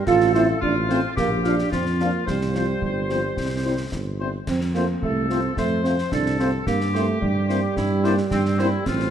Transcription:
0.07 tuba A1, euphonium F4, woodwind section A4, concert bass drum, snare, crash
0.21 snare
0.34 french horn section A3 C4 F4, euphonium E4, trumpet section C5, snare
0.61 tuba A1, euphonium D4, woodwind section F4, concert bass drum
0.89 french horn section A3 C4 F4, euphonium C4, trumpet section C5, snare
1.16 tuba A#1, euphonium A#3, woodwind section G4, concert bass drum, snare
1.43 french horn section F3 D4 F4, euphonium D4, trumpet section F5, snare
1.59 snare
1.71 tuba F2, euphonium C4, woodwind section F4, concert bass drum, snare
1.86 snare
1.99 french horn section F3 D4 F4, euphonium A#3, trumpet section F5, snare
2.26 tuba C2, euphonium G3, woodwind section C5, concert bass drum, snare
2.41 snare
2.55 french horn section F3 C4 F4, trumpet section C5, snare
2.82 tuba G1, concert bass drum
3.10 french horn section F3 C4 F4, trumpet section C5, snare
3.37 tuba C2, concert bass drum, snare
3.64 french horn section G3 C4 E4, trumpet section C5
3.92 tuba G1, concert bass drum, snare
4.20 french horn section G3 C4 E4, trumpet section C5
4.47 tuba F2, euphonium C4, concert bass drum, snare, crash
4.61 snare
4.74 french horn section A3 C4 F4, euphonium A#3, trumpet section C5, snare
5.02 tuba C2, euphonium A3, woodwind section A4, concert bass drum
5.28 french horn section A3 C4 F4, euphonium C4, trumpet section C5, snare
5.56 tuba F2, euphonium A3, woodwind section C5, concert bass drum, snare
5.84 french horn section A3 C4 F4, euphonium C4, trumpet section C5, snare
5.98 snare
6.12 tuba C2, euphonium D4, woodwind section A4, concert bass drum, snare
6.26 snare
6.39 french horn section A3 C4 F4, euphonium C4, trumpet section C5, snare
6.67 tuba G2, euphonium A#3, woodwind section G4, concert bass drum, snare
6.81 snare
6.93 euphonium A3, french horn section A#3 C4 E4, trumpet section C5, snare
7.22 tuba G2, euphonium G3, concert bass drum
7.49 french horn section A#3 C4 E4, trumpet section C5, snare
7.76 tuba G2, woodwind section E4, concert bass drum, snare
8.04 french horn section A#3 C4 E4, woodwind section D4, trumpet section C5, snare
8.18 snare
8.31 tuba G2, woodwind section C4, concert bass drum, snare
8.45 snare
8.59 french horn section A#3 C4 E4, woodwind section E4, trumpet section C5, snare
8.86 tuba A1, euphonium C4, woodwind section F4, concert bass drum, snare, crash
9.00 snare

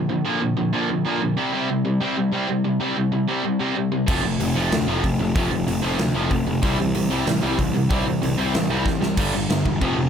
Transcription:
0.10 distorted electric guitar A#2 D3, overdriven electric guitar F3
0.25 distorted electric guitar A#2 D3 F3, overdriven electric guitar A#3
0.41 distorted electric guitar A#2 D3, overdriven electric guitar F3
0.57 distorted electric guitar A#2 D3, overdriven electric guitar F3
0.73 distorted electric guitar A#2 D3 F3, overdriven electric guitar A#3
0.90 distorted electric guitar A#2 D3, overdriven electric guitar F3
1.06 distorted electric guitar A#2 D3 F3, overdriven electric guitar A#3
1.22 distorted electric guitar A#2 D3, overdriven electric guitar F3
1.37 distorted electric guitar C3 G3 C4
1.53 distorted electric guitar C3 G3 C4
1.69 distorted electric guitar C3 G3
1.85 distorted electric guitar C3 G3
2.01 distorted electric guitar C3 G3 C4
2.17 distorted electric guitar C3 G3
2.32 distorted electric guitar C3 G3 C4
2.48 distorted electric guitar C3 G3
2.64 distorted electric guitar C3 G3
2.80 distorted electric guitar C3 G3 C4
2.97 distorted electric guitar C3 G3
3.12 distorted electric guitar C3 G3
3.28 distorted electric guitar C3 G3 C4
3.44 distorted electric guitar C3 G3
3.60 distorted electric guitar C3 G3 C4
3.76 distorted electric guitar C3 G3
3.92 distorted electric guitar C3 G3
4.07 picked electric bass F1, overdriven electric guitar F2 C3, distorted electric guitar F3 A3 C4, kick, crash
4.23 picked electric bass F1, overdriven electric guitar F2 C3, distorted electric guitar F3 A3
4.40 picked electric bass F1, overdriven electric guitar F2 C3, distorted electric guitar F3 A3, open hi-hat
4.55 picked electric bass F1, overdriven electric guitar F2 C3, distorted electric guitar F3 A3 C4
4.71 picked electric bass D2, overdriven electric guitar F2 C3, distorted electric guitar F3 A3, snare, open hi-hat
4.87 picked electric bass F1, overdriven electric guitar F2 C3, distorted electric guitar F3 A3 C4
5.03 picked electric bass F1, overdriven electric guitar F2 C3, distorted electric guitar F3 A3, kick, open hi-hat
5.19 picked electric bass F1, overdriven electric guitar F2 C3, distorted electric guitar F3 A3
5.35 picked electric bass F1, overdriven electric guitar F2 C3, distorted electric guitar F3 A3 C4, kick, open hi-hat
5.51 picked electric bass F1, overdriven electric guitar F2 C3, distorted electric guitar F3 A3
5.67 picked electric bass F1, overdriven electric guitar F2 C3, distorted electric guitar F3 A3, open hi-hat
5.82 picked electric bass F1, overdriven electric guitar F2 C3, distorted electric guitar F3 A3 C4
5.99 picked electric bass D2, overdriven electric guitar F2 C3, distorted electric guitar F3 A3, snare, open hi-hat
6.14 picked electric bass F1, overdriven electric guitar F2 C3, distorted electric guitar F3 A3 C4
6.30 picked electric bass F1, overdriven electric guitar F2 C3, distorted electric guitar F3 A3, kick, open hi-hat
6.47 picked electric bass F1, overdriven electric guitar F2 C3, distorted electric guitar F3 A3
6.62 picked electric bass C2, distorted electric guitar C3 E3 G3, overdriven electric guitar C4, kick, open hi-hat
6.79 picked electric bass C2, distorted electric guitar C3 E3, overdriven electric guitar G3
6.95 picked electric bass C2, distorted electric guitar C3 E3, overdriven electric guitar G3, open hi-hat
7.10 picked electric bass C2, distorted electric guitar C3 E3 G3, overdriven electric guitar C4
7.26 picked electric bass A1, distorted electric guitar C3 E3, overdriven electric guitar G3, snare, open hi-hat
7.42 picked electric bass C2, distorted electric guitar C3 E3 G3, overdriven electric guitar C4
7.58 picked electric bass C2, distorted electric guitar C3 E3, overdriven electric guitar G3, kick, open hi-hat
7.74 picked electric bass C2, distorted electric guitar C3 E3, overdriven electric guitar G3
7.90 picked electric bass C2, distorted electric guitar C3 E3 G3, overdriven electric guitar C4, kick, open hi-hat
8.06 picked electric bass C2, distorted electric guitar C3 E3, overdriven electric guitar G3
8.22 picked electric bass C2, distorted electric guitar C3 E3, overdriven electric guitar G3, open hi-hat
8.38 picked electric bass C2, distorted electric guitar C3 E3 G3, overdriven electric guitar C4
8.54 picked electric bass A1, distorted electric guitar C3 E3, overdriven electric guitar G3, snare, open hi-hat
8.70 picked electric bass C2, distorted electric guitar C3 E3 G3, overdriven electric guitar C4
8.86 picked electric bass C2, distorted electric guitar C3 E3, overdriven electric guitar G3, kick, snare
9.02 picked electric bass C2, distorted electric guitar C3 E3, overdriven electric guitar G3, snare
9.17 picked electric bass G1, distorted electric guitar G2 D3 G3, kick, crash
9.34 picked electric bass G1, distorted electric guitar G2 D3
9.49 picked electric bass G1, distorted electric guitar G2 D3, snare, crash
9.65 picked electric bass E1, distorted electric guitar G2 D3, kick
9.81 picked electric bass F1, distorted electric guitar F2 C3 F3, kick, crash
9.97 picked electric bass F1, distorted electric guitar F2 C3

